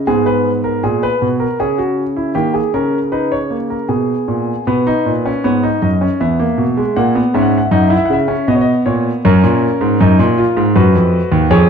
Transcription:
0.07 0.81 G#2 medium
0.07 1.55 B3 medium
0.07 0.26 G#4 medium
0.26 0.50 B4 medium
0.64 0.83 A#4 medium
0.84 1.07 A#2 medium
0.84 1.02 G#4 medium
1.03 1.26 B4 medium
1.22 1.45 B2 medium
1.40 1.59 A#4 medium
1.60 2.33 C#3 medium
1.60 2.33 C#4 medium
1.60 1.78 G#4 medium
1.78 2.02 F#4 medium
2.16 2.35 E4 medium
2.35 2.59 D#3 medium
2.35 2.59 A#3 medium
2.35 2.54 G4 medium
2.54 2.73 G#4 medium
2.74 3.86 C#3 medium
2.74 2.98 C#4 medium
2.74 2.98 A#4 medium
3.12 3.36 D#4 medium
3.12 3.31 B4 medium
3.32 3.56 C#5 medium
3.50 3.74 A#3 medium
3.70 3.89 A#4 medium
3.89 4.13 B2 medium
3.89 4.64 B3 soft
3.89 4.64 G#4 medium
4.28 4.52 A#2 medium
4.67 4.91 B2 medium
4.67 4.86 B3 medium
4.67 5.42 B4 medium
4.87 5.11 D#4 medium
5.06 5.30 A#2 medium
5.26 5.44 C#4 medium
5.44 5.68 G#2 medium
5.44 5.63 B3 medium
5.44 5.68 C#5 medium
5.63 5.87 D#4 medium
5.82 6.06 F#2 medium
5.82 6.06 D#5 medium
6.01 6.20 C#4 medium
6.20 6.44 E2 medium
6.20 6.39 B3 medium
6.20 6.94 E5 medium
6.39 6.63 A#3 medium
6.58 6.82 B2 medium
6.77 6.96 G#3 medium
6.96 7.20 A#2 medium
6.96 7.15 A#3 medium
6.96 7.20 F#5 medium
7.15 7.34 B3 medium
7.34 7.58 G#2 medium
7.34 7.58 C#4 medium
7.34 7.43 E5 medium
7.42 7.50 F#5 medium
7.49 7.58 E5 medium
7.58 7.66 F#5 medium
7.65 7.74 E5 medium
7.71 7.95 F#2 medium
7.71 7.91 D#4 medium
7.71 7.82 F#5 medium
7.82 7.90 E5 medium
7.89 8.14 E4 medium
7.89 7.98 F#5 medium
7.97 8.06 E5 medium
8.05 8.14 F#5 medium
8.10 8.34 C#3 medium
8.10 8.47 E5 medium
8.28 8.47 C#4 medium
8.48 8.71 B2 medium
8.48 9.21 B3 medium
8.48 8.52 D#5 medium
8.55 8.62 C#5 medium
8.61 8.76 D#5 medium
8.86 9.09 A#2 medium
8.86 9.09 C#5 medium
9.25 9.43 F#2 loud
9.25 9.97 C#4 medium
9.25 10.72 A#4 medium
9.44 9.67 A#2 medium
9.81 9.99 G#2 medium
10.00 10.18 F#2 medium
10.00 10.24 D#4 medium
10.19 10.43 A#2 medium
10.38 10.61 F4 medium
10.57 10.75 G#2 medium
10.76 10.94 F#2 medium
10.76 11.49 F#4 medium
10.76 11.49 B4 medium
10.95 11.18 F2 medium
11.32 11.50 D#2 loud
11.51 11.69 F2 loud
11.51 11.70 G#4 medium
11.51 11.70 C#5 medium

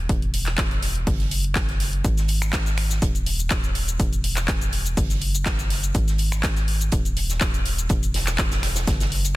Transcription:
0.09 1.05 E1 medium
0.09 kick loud
0.09 closed hi-hat medium
0.22 closed hi-hat soft
0.34 closed hi-hat medium
0.34 open hi-hat loud
0.46 snare soft
0.46 clap soft
0.46 closed hi-hat soft
0.58 kick loud
0.58 snare loud
0.58 clap loud
0.58 closed hi-hat medium
0.71 closed hi-hat soft
0.82 snare soft
0.82 closed hi-hat medium
0.82 open hi-hat loud
0.96 closed hi-hat soft
1.07 2.02 F#1 medium
1.07 kick loud
1.07 closed hi-hat medium
1.07 open hi-hat medium
1.20 snare soft
1.20 closed hi-hat soft
1.31 closed hi-hat medium
1.31 open hi-hat loud
1.44 closed hi-hat soft
1.55 kick loud
1.55 snare loud
1.55 clap loud
1.55 closed hi-hat medium
1.69 snare soft
1.69 closed hi-hat soft
1.80 snare soft
1.80 closed hi-hat medium
1.80 open hi-hat loud
1.93 closed hi-hat soft
2.04 3.00 G#1 medium
2.04 kick loud
2.04 closed hi-hat medium
2.04 shaker medium
2.17 snare soft
2.17 closed hi-hat soft
2.17 shaker soft
2.28 closed hi-hat medium
2.28 open hi-hat loud
2.42 finger snap medium
2.42 snare soft
2.42 shaker medium
2.53 kick loud
2.53 snare loud
2.53 clap loud
2.53 closed hi-hat medium
2.53 shaker medium
2.66 snare soft
2.66 closed hi-hat soft
2.66 shaker soft
2.77 finger snap medium
2.77 closed hi-hat medium
2.77 open hi-hat loud
2.90 snare medium
2.90 closed hi-hat soft
2.90 shaker medium
3.02 3.97 D#1 medium
3.02 kick loud
3.02 closed hi-hat medium
3.02 shaker medium
3.15 closed hi-hat soft
3.15 shaker soft
3.26 closed hi-hat medium
3.26 open hi-hat loud
3.39 closed hi-hat soft
3.39 shaker medium
3.50 kick loud
3.50 snare loud
3.50 clap loud
3.50 closed hi-hat medium
3.50 shaker medium
3.63 closed hi-hat soft
3.63 shaker soft
3.75 closed hi-hat medium
3.75 open hi-hat loud
3.88 closed hi-hat soft
3.88 shaker medium
4.00 4.95 E1 medium
4.00 kick loud
4.00 closed hi-hat medium
4.00 shaker medium
4.13 closed hi-hat soft
4.13 shaker soft
4.24 closed hi-hat medium
4.24 open hi-hat loud
4.37 finger snap medium
4.37 snare soft
4.37 clap soft
4.37 shaker medium
4.48 kick loud
4.48 snare loud
4.48 clap loud
4.48 closed hi-hat loud
4.48 closed hi-hat medium
4.48 shaker medium
4.61 closed hi-hat soft
4.61 shaker soft
4.73 closed hi-hat medium
4.73 open hi-hat loud
4.86 closed hi-hat soft
4.86 shaker medium
4.97 5.93 F#1 medium
4.97 kick loud
4.97 closed hi-hat medium
4.97 open hi-hat medium
4.97 shaker medium
5.10 snare soft
5.10 closed hi-hat soft
5.10 shaker soft
5.21 closed hi-hat medium
5.21 open hi-hat loud
5.35 closed hi-hat soft
5.35 shaker medium
5.45 kick loud
5.45 snare loud
5.45 clap loud
5.45 closed hi-hat medium
5.45 shaker medium
5.59 snare soft
5.59 closed hi-hat soft
5.59 shaker soft
5.70 snare medium
5.70 closed hi-hat medium
5.70 open hi-hat loud
5.83 closed hi-hat soft
5.83 shaker medium
5.94 6.90 G#1 medium
5.94 kick loud
5.94 closed hi-hat medium
5.94 shaker medium
6.08 snare soft
6.08 closed hi-hat soft
6.08 shaker soft
6.18 closed hi-hat medium
6.18 open hi-hat loud
6.32 finger snap medium
6.32 snare soft
6.32 shaker medium
6.43 kick loud
6.43 snare loud
6.43 clap loud
6.43 closed hi-hat loud
6.43 closed hi-hat medium
6.43 shaker medium
6.57 snare soft
6.57 closed hi-hat soft
6.57 shaker soft
6.68 open hi-hat loud
6.81 closed hi-hat soft
6.81 shaker medium
6.92 7.88 D#1 medium
6.92 kick loud
6.92 closed hi-hat loud
6.92 shaker medium
7.05 closed hi-hat soft
7.05 shaker soft
7.17 closed hi-hat medium
7.17 open hi-hat loud
7.30 snare soft
7.30 closed hi-hat soft
7.30 shaker medium
7.41 kick loud
7.41 snare loud
7.41 clap loud
7.41 closed hi-hat medium
7.41 shaker medium
7.54 closed hi-hat soft
7.54 shaker soft
7.66 closed hi-hat medium
7.66 open hi-hat loud
7.78 closed hi-hat soft
7.78 shaker medium
7.89 8.85 E1 medium
7.89 kick loud
7.89 closed hi-hat medium
7.89 closed hi-hat loud
7.89 shaker medium
8.03 closed hi-hat soft
8.03 shaker soft
8.14 snare loud
8.14 closed hi-hat medium
8.14 open hi-hat loud
8.27 finger snap medium
8.27 snare loud
8.27 clap soft
8.27 closed hi-hat medium
8.27 shaker medium
8.38 kick loud
8.38 snare loud
8.38 clap loud
8.38 closed hi-hat loud
8.38 closed hi-hat medium
8.38 shaker medium
8.51 snare loud
8.51 closed hi-hat soft
8.51 closed hi-hat medium
8.51 shaker soft
8.63 finger snap medium
8.63 snare loud
8.63 closed hi-hat medium
8.63 open hi-hat loud
8.75 snare loud
8.75 closed hi-hat soft
8.75 closed hi-hat medium
8.75 shaker medium
8.87 9.36 F#1 medium
8.87 kick loud
8.87 snare loud
8.87 closed hi-hat loud
8.87 closed hi-hat medium
8.87 shaker medium
9.00 snare loud
9.00 closed hi-hat soft
9.00 closed hi-hat medium
9.00 shaker soft
9.12 snare soft
9.12 open hi-hat loud
9.24 closed hi-hat medium
9.24 closed hi-hat soft
9.24 shaker medium

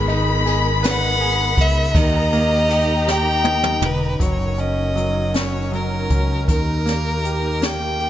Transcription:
0.00 1.54 G#1 loud
0.00 4.16 D#3 medium
0.00 1.90 G#3 medium
0.00 1.92 G#3 medium
0.00 1.90 B3 medium
0.00 1.95 B5 loud
0.08 1.53 D#4 medium
0.08 ride soft
0.46 1.19 G#4 medium
0.46 ride medium
0.83 1.91 B4 medium
0.83 snare loud
0.83 ride medium
0.87 1.63 F#5 loud
1.20 1.92 G#4 medium
1.20 ride soft
1.57 1.92 C#2 medium
1.57 1.99 E5 medium
1.57 kick medium
1.57 ride medium
1.94 3.78 D#2 loud
1.94 4.17 D#3 medium
1.94 4.18 D#4 medium
1.94 4.18 G4 medium
1.94 3.08 D#5 medium
1.94 2.69 A#5 medium
1.94 4.18 A#5 medium
1.94 kick loud
1.94 ride medium
2.32 3.79 A#3 medium
2.32 ride soft
2.68 3.42 D#4 medium
2.68 3.82 G5 medium
2.68 ride medium
3.06 4.16 G4 medium
3.06 snare medium
3.10 3.86 G5 medium
3.44 4.18 D#4 medium
3.44 high tom medium
3.63 mid tom medium
3.82 4.18 E1 medium
3.82 4.24 B4 medium
3.82 mid tom medium
4.19 6.07 F#1 medium
4.19 4.94 F#3 soft
4.19 6.46 F#3 medium
4.19 6.46 C#4 soft
4.19 8.10 D#4 soft
4.19 8.10 A#4 medium
4.19 4.61 C#5 medium
4.19 kick medium
4.19 closed hi-hat medium
4.58 5.32 C#4 soft
4.58 5.37 D#5 medium
4.58 closed hi-hat soft
4.96 5.71 F#3 soft
4.96 closed hi-hat soft
5.34 6.09 C#4 soft
5.34 5.73 C#5 medium
5.34 snare medium
5.34 closed hi-hat medium
5.72 6.46 F#3 soft
5.72 6.46 A#4 medium
5.72 closed hi-hat soft
6.10 6.46 C#2 medium
6.10 6.47 C#4 soft
6.10 kick medium
6.10 closed hi-hat medium
6.48 8.10 D#2 medium
6.48 8.10 D#3 soft
6.48 8.10 D#3 medium
6.48 8.10 G4 soft
6.48 7.66 A#4 medium
6.48 kick medium
6.48 closed hi-hat medium
6.86 7.60 A#3 soft
6.86 snare soft
6.86 closed hi-hat soft
7.24 7.98 G4 soft
7.24 closed hi-hat medium
7.61 8.10 A#3 soft
7.61 8.10 G5 medium
7.61 snare medium
7.61 closed hi-hat medium
7.99 8.10 G4 soft
7.99 closed hi-hat soft

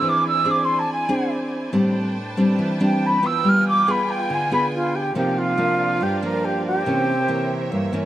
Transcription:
0.00 0.86 E3 medium
0.00 0.42 C4 medium
0.00 0.42 D4 medium
0.00 1.71 E4 medium
0.00 0.42 G#4 medium
0.00 3.41 C5 medium
0.00 1.71 D5 medium
0.00 1.71 G#5 medium
0.08 0.26 D6 medium
0.27 0.52 E6 loud
0.45 1.06 C4 medium
0.45 1.06 D4 medium
0.45 1.06 G#4 medium
0.50 0.66 D6 medium
0.64 0.80 C6 medium
0.79 0.91 A5 medium
0.93 1.30 G#5 medium
1.09 1.70 C4 medium
1.09 1.70 D4 medium
1.09 1.70 G#4 medium
1.73 2.57 A2 medium
1.73 2.16 G3 medium
1.73 2.16 C4 medium
1.73 2.16 D4 medium
1.73 3.43 D4 medium
1.73 5.12 B4 medium
1.73 5.12 G5 medium
1.73 3.43 A5 medium
2.37 2.77 G3 medium
2.37 2.77 C4 medium
2.37 2.77 D4 medium
2.59 3.42 E3 medium
2.80 3.20 G3 medium
2.80 3.20 C4 medium
2.80 3.20 D4 medium
2.80 3.07 G5 medium
3.06 3.27 B5 medium
3.23 3.84 B3 medium
3.23 3.84 F4 medium
3.23 3.50 E6 loud
3.44 4.28 G3 medium
3.44 5.14 F4 medium
3.44 5.13 G#5 medium
3.48 3.67 F6 loud
3.68 3.92 D6 medium
3.87 4.48 B3 medium
3.87 4.48 F4 medium
3.87 4.48 G#4 medium
3.87 4.12 B5 medium
4.10 4.35 G5 medium
4.30 5.13 D3 medium
4.30 4.52 G#5 medium
4.51 5.12 B3 medium
4.51 5.12 F4 medium
4.51 5.13 G#4 medium
4.51 4.65 B5 medium
4.74 4.96 F4 medium
4.95 5.16 G4 loud
5.15 5.99 C3 medium
5.15 5.55 F3 medium
5.15 5.55 A#3 medium
5.15 5.61 C4 medium
5.15 5.55 D#4 medium
5.15 6.85 F4 medium
5.15 5.39 G4 medium
5.15 8.05 A#4 medium
5.15 8.05 C5 medium
5.15 6.85 D5 medium
5.15 6.85 F5 medium
5.38 6.04 F4 loud
5.57 6.01 F3 medium
5.57 6.01 A#3 medium
5.57 6.86 D4 medium
6.01 6.84 G2 medium
6.01 6.23 G4 medium
6.22 6.83 F3 medium
6.22 6.83 A#3 medium
6.22 6.46 A#4 medium
6.44 6.65 G4 loud
6.66 7.90 G4 loud
6.85 7.70 C3 medium
6.85 7.14 E3 medium
6.85 7.14 A#3 medium
6.85 7.73 C4 medium
6.85 7.14 C#4 medium
6.85 8.05 C#5 medium
6.85 8.05 E5 medium
7.28 7.90 E3 medium
7.28 7.90 A#3 medium
7.72 8.05 G2 medium
7.72 7.95 A#3 medium
7.93 8.05 E3 medium
7.93 8.05 A#3 medium
7.93 8.05 C#4 medium

